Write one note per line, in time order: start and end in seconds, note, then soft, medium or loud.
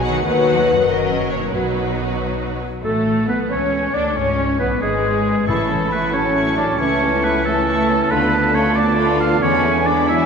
0.00 0.18 B1 medium
0.00 0.18 B2 medium
0.00 0.18 B2 soft
0.00 0.11 D#4 soft
0.00 0.15 F#4 soft
0.00 0.24 F#4 medium
0.00 0.24 F#4 soft
0.00 0.20 B4 soft
0.00 0.24 B4 soft
0.00 0.23 F#5 medium
0.04 0.81 D#3 soft
0.04 0.25 F#3 soft
0.04 0.25 D#4 soft
0.12 0.84 D#4 soft
0.17 0.79 F#4 soft
0.21 0.88 B4 soft
0.21 0.87 B4 medium
0.21 0.87 F#5 medium
0.25 0.85 D#2 soft
0.25 0.85 F#3 soft
0.25 0.85 D#4 soft
0.25 0.85 F#4 soft
0.25 0.84 B4 soft
0.71 1.46 F#2 soft
0.76 1.48 C#4 soft
0.80 1.43 F#4 soft
0.85 1.53 F#2 soft
0.85 1.51 F#4 soft
0.85 1.53 A#4 soft
0.85 1.52 A#4 soft
0.85 1.31 D#5 medium
0.89 1.54 F#1 soft
0.89 1.52 F#3 soft
0.89 1.52 C#4 soft
0.89 1.52 A#4 soft
1.30 1.53 C#5 medium
1.35 2.77 B2 soft
1.40 2.79 D#4 soft
1.44 2.81 F#4 soft
1.48 2.60 F#4 soft
1.48 2.83 B4 soft
1.48 2.62 B4 soft
1.53 2.63 B1 soft
1.53 2.63 B2 soft
1.53 2.61 F#3 soft
1.53 2.63 D#4 soft
1.53 2.51 F#4 soft
1.53 2.59 B4 soft
2.83 3.26 A1 soft
2.83 4.18 A2 soft
2.83 3.29 A3 soft
2.83 3.25 A3 soft
2.83 3.26 A3 soft
2.83 3.25 A4 soft
2.83 3.26 A4 soft
3.06 4.19 E3 soft
3.27 3.51 B1 soft
3.27 3.50 B3 soft
3.27 3.51 B3 soft
3.27 3.36 B3 soft
3.27 3.39 B3 soft
3.27 3.51 B3 soft
3.27 3.50 B3 soft
3.27 4.59 E4 soft
3.27 3.50 B4 soft
3.27 3.39 B4 soft
3.50 3.94 C#2 soft
3.50 3.93 C#4 soft
3.50 3.94 C#4 soft
3.50 3.95 C#4 soft
3.50 3.94 C#4 soft
3.50 3.97 C#4 soft
3.50 3.94 C#4 soft
3.50 3.94 A4 soft
3.50 3.94 C#5 soft
3.50 3.95 C#5 soft
3.50 3.95 C#5 medium
3.72 4.18 C#5 soft
3.94 4.16 D2 soft
3.94 4.04 D4 soft
3.94 4.02 D4 soft
3.94 4.16 D4 soft
3.94 4.19 A4 soft
3.94 4.18 D5 soft
3.94 4.17 D5 soft
4.15 4.60 C#2 soft
4.15 5.50 G#2 soft
4.15 4.59 C#4 soft
4.15 4.60 C#4 soft
4.15 4.59 C#4 soft
4.15 4.60 C#4 soft
4.15 4.60 C#5 medium
4.15 4.60 C#5 soft
4.15 4.59 C#5 medium
4.38 5.50 G#3 soft
4.59 4.83 B1 soft
4.59 4.82 B3 soft
4.59 4.68 B3 soft
4.59 4.84 B3 soft
4.59 4.71 B3 soft
4.59 4.83 B3 soft
4.59 5.90 E4 soft
4.59 4.81 B4 soft
4.59 4.82 B4 soft
4.59 4.83 B4 soft
4.82 5.47 G#1 soft
4.82 5.48 G#3 soft
4.82 5.46 G#3 soft
4.82 5.47 G#3 soft
4.82 5.49 G#3 soft
4.82 5.46 G#4 medium
4.82 5.48 G#4 soft
4.82 5.47 G#4 soft
4.82 5.25 B4 soft
5.04 5.50 D5 soft
5.26 5.50 B4 soft
5.47 6.76 A1 soft
5.47 6.81 A2 soft
5.47 6.10 A2 medium
5.47 6.15 E3 soft
5.47 5.92 A3 soft
5.47 5.69 A3 soft
5.47 6.76 C#4 soft
5.47 5.68 E4 soft
5.47 8.07 E4 soft
5.47 6.16 E4 soft
5.47 5.91 A4 medium
5.47 6.10 B5 soft
5.47 5.68 C#6 soft
5.69 6.81 E3 soft
5.69 5.92 C#4 soft
5.69 5.92 A4 soft
5.69 5.92 A5 soft
5.91 6.14 A3 soft
5.91 6.14 B3 soft
5.91 6.14 E4 soft
5.91 7.22 E4 soft
5.91 6.13 B4 medium
5.91 6.14 C#6 soft
6.13 6.79 F#3 soft
6.13 6.57 C#4 soft
6.13 6.35 C#4 soft
6.13 7.45 C#4 soft
6.13 6.35 A4 soft
6.13 6.56 A4 soft
6.13 6.56 C#5 medium
6.13 6.36 A5 soft
6.13 6.78 A5 soft
6.35 6.56 A3 soft
6.35 6.56 E4 soft
6.35 7.66 C#5 soft
6.35 6.56 C#6 soft
6.57 6.80 C#4 soft
6.57 6.65 D4 medium
6.57 7.44 A4 soft
6.57 6.80 A4 soft
6.57 6.81 D5 medium
6.57 6.80 A5 soft
6.79 8.09 C#2 medium
6.79 8.13 C#3 soft
6.79 7.44 E3 soft
6.79 8.10 A3 soft
6.79 7.00 A3 soft
6.79 7.23 C#4 medium
6.79 7.00 E4 soft
6.79 7.25 C#5 medium
6.79 7.44 A5 soft
6.79 7.00 C#6 soft
7.01 8.13 C#4 soft
7.01 7.24 C#4 soft
7.01 7.24 A4 soft
7.01 7.23 A5 soft
7.23 7.46 A3 soft
7.23 7.45 B3 medium
7.23 8.13 E4 soft
7.23 7.46 E4 soft
7.23 7.45 B4 medium
7.23 7.45 C#6 soft
7.44 8.10 E3 soft
7.44 8.10 A3 medium
7.44 7.68 C#4 soft
7.44 8.10 C#4 soft
7.44 7.88 A4 soft
7.44 8.12 A4 medium
7.44 7.68 A4 soft
7.44 7.67 A5 soft
7.44 9.39 A5 medium
7.67 7.88 A3 soft
7.67 7.88 E4 soft
7.67 8.13 C#5 soft
7.67 7.88 C#6 soft
7.88 8.11 C#4 soft
7.88 8.11 A4 soft
7.88 8.76 A4 soft
7.88 8.11 A5 soft
8.10 9.41 D2 medium
8.10 8.76 D3 soft
8.10 9.45 D3 medium
8.10 9.39 A3 medium
8.10 8.33 A3 medium
8.10 8.55 B3 medium
8.10 9.41 D4 medium
8.10 9.39 F4 medium
8.10 8.32 F4 soft
8.10 8.56 B4 medium
8.10 8.31 B5 soft
8.32 9.45 A3 soft
8.32 8.56 B3 soft
8.32 8.55 D4 soft
8.32 8.54 A5 soft
8.54 8.78 A3 soft
8.54 8.77 C#4 medium
8.54 8.77 F4 soft
8.54 9.45 F4 soft
8.54 8.78 C#5 medium
8.54 8.77 B5 soft
8.76 10.12 D3 medium
8.76 8.99 B3 soft
8.76 8.99 D4 soft
8.76 9.21 D4 medium
8.76 9.20 A4 soft
8.76 9.20 D5 medium
8.76 8.99 A5 soft
8.98 9.20 A3 soft
8.98 9.19 F4 soft
8.98 10.26 B4 soft
8.98 9.19 B5 soft
9.20 9.44 B3 soft
9.20 9.41 D4 soft
9.20 9.43 F4 medium
9.20 9.45 A4 soft
9.20 9.42 F5 medium
9.20 9.43 A5 soft
9.42 10.26 E2 medium
9.42 10.26 E3 medium
9.42 10.26 G#3 medium
9.42 9.65 G#3 medium
9.42 10.26 B3 medium
9.42 9.86 C#4 medium
9.42 9.63 D4 medium
9.42 10.26 D4 medium
9.42 9.88 C#5 medium
9.42 10.26 G#5 medium
9.42 9.64 B5 medium
9.64 10.26 B3 soft
9.64 9.88 B3 soft
9.64 9.86 E4 soft
9.64 9.88 G#5 soft
9.85 10.10 G#3 soft
9.85 10.08 D4 soft
9.85 10.26 D4 soft
9.85 10.09 D4 medium
9.85 10.08 D5 medium
9.85 10.09 B5 soft
10.08 10.26 F#3 medium
10.08 10.26 B3 soft
10.08 10.26 E4 medium
10.08 10.26 G#4 soft
10.08 10.26 E5 medium
10.08 10.26 G#5 medium